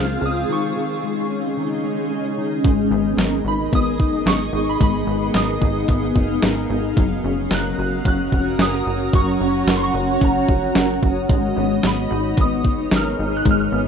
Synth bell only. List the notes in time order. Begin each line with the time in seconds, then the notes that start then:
Already playing: F6
0.26 D#6
0.52 C#6
3.48 B5
3.75 D#6
4.28 C#6
4.69 B5
4.83 B5
5.36 D#6
7.54 F#6
8.08 F#6
8.62 D#6
9.15 C#6
9.70 C#6
9.77 C6
9.83 C#6
10.24 A#5
11.87 B5
12.41 D#6
12.96 F6
13.37 F#6
13.51 F6